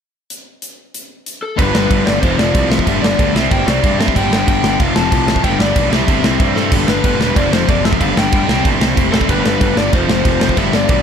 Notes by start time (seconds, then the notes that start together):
0.30 closed hi-hat
0.62 closed hi-hat
0.94 closed hi-hat
1.26 closed hi-hat
1.43 A4
1.56 G1 G2 D3 G3 B3 D4 B4, kick, crash
1.73 G1 G2 D3 G3 B3 D4 B4, snare
1.89 G1 G2 D3 G3 B3 D4, kick, crash
2.05 G1 G2 D3 G3 B3 D4 D5, snare
2.20 F1 F2 C3 F3 A3 C4 C5, kick, crash
2.37 F1 F2 C3 F3 A3 C4 D5, snare
2.53 C2 F2 C3 F3 A3 C4, kick, crash
2.69 F2 C3 F3 A3 C4 E5, snare
2.79 kick
2.85 G1 G2 D3 G3 B3 D4, kick, crash
3.00 G1 G2 D3 G3 B3 D4 D5
3.04 snare
3.17 D2 G2 D3 G3 B3 D4, kick, crash
3.34 C2 C3 G3 C4 E4 E5, snare
3.50 G1 C3 G3 C4 E4 G5, kick, crash
3.66 C2 C3 G3 C4 E4 D5, snare
3.82 G2 C3 G3 C4 E4, kick, crash
3.95 C3 G3 C4 E4 D5
4.00 C3 E5, snare
4.08 kick
4.14 G1 G2 D3 G3 B3 D4 G5, kick, crash
4.30 G1 G2 D3 G3 B3 D4, snare
4.47 G1 G2 D3 G3 B3 D4 G5, kick, crash
4.62 G1 G2 D3 G3 B3 D4, snare
4.78 F1 F2 C3 F3 A3 C4 F5, kick, crash
4.94 F1 F2 C3 F3 A3 C4 A5, snare
5.11 C2 F2 C3 F3 A3 C4, kick, crash
5.28 F2 C3 F3 A3 C4, snare
5.36 kick
5.43 G1 G2 D3 G3 B3 D4 G5, kick, crash
5.59 G1 G2 D3 G3 B3 D4 D5, snare
5.76 B1 G2 D3 G3 B3 D4, kick, crash
5.91 C2 C3 G3 C4 E4 E5, snare
6.07 G1 C3 G3 C4 E4, kick, crash
6.23 C2 C3 G3 C4 E4, snare
6.39 G2 C3 G3 C4 E4, kick, crash
6.56 C3 G3 C4 E4 A4, snare
6.71 G1 G2 D3 G3 B3 D4, kick, splash, crash
6.87 G1 G2 D3 G3 B3 D4 B4, snare
7.03 G1 G2 D3 G3 B3 D4, kick, crash
7.19 E1 G2 D3 G3 B3 D4 B4, snare
7.35 F1 F2 C3 F3 A3 C4 D5, kick, crash
7.51 F1 F2 C3 F3 A3 C4 C5, snare
7.67 F#1 F2 C3 F3 A3 C4 D5, kick, crash
7.82 F2 C3 F3 A3 C4 E5, snare
7.93 kick
8.00 G1 G2 D3 G3 B3 D4 F5, kick, crash
8.16 G1 G2 D3 G3 B3 D4 G5, snare
8.31 G1 G2 D3 G3 B3 D4, kick, crash
8.47 C2 C3 G3 C4 E4, snare
8.63 G1 C3 G3 C4 E4, kick, crash
8.79 C2 C3 G3 C4 E4, snare
8.96 F1 C3 G3 C4 E4, kick, crash
9.12 C3 G3 C4 E4 A4, snare
9.21 kick
9.28 G1 G2 D3 G3 B3 D4 B4, kick, crash
9.44 G1 G2 D3 G3 B3 D4 B4, snare
9.60 G1 G2 D3 G3 B3 D4, kick, crash
9.75 G1 G2 D3 G3 B3 D4 D5, snare
9.92 F1 F2 C3 F3 A3 C4 C5, kick, crash
10.08 F1 F2 C3 F3 A3 C4, snare
10.24 F1 F2 C3 F3 A3 C4, kick, crash
10.40 F2 C3 F3 A3 C4, snare
10.49 kick
10.56 G1 G2 D3 G3 B3 D4 E5, kick, crash
10.72 G1 G2 D3 G3 B3 D4 D5, snare
10.87 B1 G2 D3 G3 B3 D4 D5, kick, crash